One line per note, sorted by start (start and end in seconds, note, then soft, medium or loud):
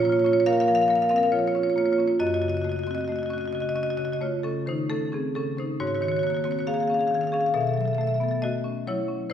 0.00 0.42 A#2 medium
0.00 0.37 A#3 medium
0.00 0.16 C#4 medium
0.00 0.09 F4 soft
0.05 0.12 C#5 medium
0.09 0.17 F4 medium
0.09 0.19 C#5 medium
0.17 0.24 F4 medium
0.17 0.26 C#5 medium
0.24 0.59 C#4 medium
0.24 0.32 F4 medium
0.24 0.33 C#5 medium
0.32 0.42 F4 medium
0.32 0.40 C#5 medium
0.40 0.43 C#5 medium
0.46 0.81 A#3 medium
0.46 0.54 A#4 medium
0.46 0.53 F5 loud
0.53 0.61 A#4 medium
0.53 0.60 F5 medium
0.60 0.68 A#4 medium
0.60 0.68 F5 medium
0.68 1.02 F3 medium
0.68 0.76 A#4 medium
0.68 0.75 F5 medium
0.75 0.83 A#4 medium
0.75 0.82 F5 medium
0.82 0.90 A#4 medium
0.82 0.88 F5 medium
0.88 1.24 A#3 soft
0.88 0.97 A#4 medium
0.88 0.96 F5 medium
0.96 1.04 A#4 medium
0.96 1.02 F5 medium
1.02 1.11 A#4 medium
1.02 1.09 F5 medium
1.09 1.32 C4 soft
1.09 1.18 A#4 medium
1.09 1.16 F5 medium
1.16 1.25 A#4 medium
1.16 1.23 F5 medium
1.23 1.29 A#4 medium
1.23 1.29 F5 medium
1.32 1.67 F3 soft
1.32 1.40 F4 medium
1.32 1.39 C#5 medium
1.39 1.48 F4 soft
1.39 1.48 C#5 medium
1.48 1.56 F4 soft
1.48 1.55 C#5 medium
1.55 1.89 C#4 soft
1.55 1.64 F4 soft
1.55 1.63 C#5 medium
1.63 1.71 F4 soft
1.63 1.70 C#5 medium
1.70 1.77 F4 soft
1.70 1.78 C#5 medium
1.76 2.11 A#3 medium
1.76 1.85 F4 soft
1.76 1.85 C#5 medium
1.85 1.92 F4 soft
1.85 1.93 C#5 medium
1.92 2.00 F4 soft
1.92 2.00 C#5 medium
1.98 2.20 C#4 soft
1.98 2.07 F4 soft
1.98 2.08 C#5 medium
2.07 2.15 F4 soft
2.07 2.16 C#5 medium
2.19 3.94 F#2 medium
2.19 2.27 F#4 medium
2.19 2.27 D#5 medium
2.27 2.34 F#4 medium
2.27 2.34 D#5 medium
2.34 2.42 F#4 medium
2.34 2.42 D#5 medium
2.42 2.77 C#3 soft
2.42 2.48 F#4 medium
2.42 2.50 D#5 medium
2.48 2.54 F#4 medium
2.48 2.57 D#5 medium
2.54 2.62 F#4 soft
2.54 2.64 D#5 medium
2.62 3.00 A3 soft
2.62 2.69 F#4 medium
2.62 2.72 D#5 medium
2.69 2.76 F#4 medium
2.69 2.79 D#5 medium
2.76 2.83 F#4 medium
2.76 2.87 D#5 medium
2.83 3.09 C4 soft
2.83 2.91 F#4 medium
2.83 2.95 D#5 medium
2.91 2.98 F#4 medium
2.95 3.04 F#4 soft
2.95 3.01 D#5 medium
3.01 3.12 F#4 medium
3.01 3.08 D#5 medium
3.08 3.44 A3 soft
3.08 3.16 D#5 medium
3.12 3.19 F#4 medium
3.12 3.23 D#5 medium
3.19 3.26 F#4 medium
3.23 3.34 F#4 medium
3.23 3.30 D#5 medium
3.30 3.66 C#4 soft
3.30 3.41 F#4 medium
3.30 3.38 D#5 medium
3.38 3.48 F#4 medium
3.38 3.46 D#5 medium
3.46 3.55 F#4 medium
3.46 3.53 D#5 medium
3.53 3.89 C#3 soft
3.53 3.62 F#4 medium
3.53 3.60 D#5 medium
3.60 3.69 F#4 medium
3.60 3.69 D#5 medium
3.69 3.77 F#4 medium
3.69 3.76 D#5 medium
3.75 4.11 C#4 soft
3.75 3.83 F#4 medium
3.75 3.83 D#5 medium
3.83 3.90 F#4 medium
3.83 3.90 D#5 medium
3.90 3.97 F#4 medium
3.90 3.97 D#5 medium
3.97 4.35 C#3 soft
3.97 4.05 F#4 medium
3.97 4.05 D#5 medium
4.05 4.12 F#4 medium
4.05 4.13 D#5 medium
4.12 4.16 F#4 medium
4.12 4.16 D#5 medium
4.21 4.57 A3 soft
4.21 4.43 F4 soft
4.21 4.44 C#5 medium
4.43 4.80 C#3 soft
4.43 4.65 C#4 medium
4.43 4.66 A4 medium
4.66 4.89 D#3 soft
4.66 4.89 D#4 medium
4.66 4.90 C5 medium
4.90 5.26 A3 soft
4.90 5.11 C#4 medium
4.90 5.12 A4 medium
5.12 5.34 C4 soft
5.12 5.35 C#4 soft
5.12 5.35 G#4 medium
5.35 5.71 C#3 soft
5.35 5.56 C#4 medium
5.35 5.58 A4 medium
5.57 5.80 C#4 soft
5.57 5.80 D#4 soft
5.57 5.80 C5 medium
5.80 7.51 G#2 medium
5.80 5.88 F#4 medium
5.80 5.87 C#5 medium
5.87 5.96 F#4 soft
5.87 5.95 C#5 medium
5.95 6.04 F#4 medium
5.95 6.02 C#5 medium
6.01 6.37 D#3 medium
6.01 6.12 F#4 medium
6.01 6.08 C#5 medium
6.08 6.19 F#4 medium
6.08 6.17 C#5 medium
6.17 6.27 F#4 medium
6.17 6.23 C#5 medium
6.23 6.59 A#3 soft
6.23 6.35 F#4 medium
6.23 6.30 C#5 medium
6.30 6.37 C#5 medium
6.35 6.44 F#4 medium
6.35 6.44 C#5 medium
6.44 6.68 C4 soft
6.44 6.52 F#4 medium
6.44 6.51 C#5 medium
6.51 6.60 F#4 medium
6.51 6.59 C#5 medium
6.59 6.64 F#4 medium
6.59 6.65 C#5 medium
6.67 7.03 A#3 soft
6.67 6.74 G#4 medium
6.67 6.74 F5 medium
6.74 6.83 G#4 soft
6.74 6.80 F5 medium
6.80 6.91 G#4 soft
6.80 6.88 F5 medium
6.88 7.25 C#4 soft
6.88 6.99 G#4 soft
6.88 6.94 F5 medium
6.94 7.01 F5 medium
6.99 7.07 G#4 soft
6.99 7.08 F5 medium
7.07 7.46 D#3 soft
7.07 7.15 G#4 soft
7.07 7.14 F5 medium
7.14 7.24 G#4 medium
7.14 7.21 F5 medium
7.21 7.32 G#4 soft
7.21 7.27 F5 medium
7.27 7.34 F5 medium
7.32 7.55 C#4 soft
7.32 7.40 G#4 medium
7.32 7.41 F5 medium
7.40 7.50 G#4 soft
7.40 7.46 F5 medium
7.46 7.51 F5 medium
7.54 9.25 B2 medium
7.54 7.62 A4 medium
7.54 7.61 E5 medium
7.61 7.69 A4 soft
7.61 7.67 E5 medium
7.67 7.77 A4 soft
7.67 7.74 E5 medium
7.74 8.11 F#3 soft
7.74 7.86 A4 soft
7.74 7.81 E5 medium
7.81 7.88 E5 medium
7.86 7.93 A4 soft
7.86 7.95 E5 medium
7.93 8.01 A4 soft
7.93 8.01 E5 medium
7.98 8.33 A3 medium
7.98 8.09 A4 soft
7.98 8.07 E5 medium
8.07 8.16 A4 soft
8.07 8.14 E5 medium
8.14 8.24 A4 soft
8.14 8.21 E5 medium
8.20 8.42 B3 medium
8.20 8.31 A4 soft
8.20 8.29 E5 medium
8.29 8.37 A4 soft
8.29 8.38 E5 medium
8.42 8.77 A3 medium
8.42 8.83 F#4 medium
8.42 8.84 D#5 medium
8.64 8.99 C#4 medium
8.87 9.21 F#3 medium
8.87 9.28 E4 medium
8.87 9.29 C#5 medium
9.08 9.30 C#4 soft
9.30 9.33 D3 medium
9.30 9.33 C5 medium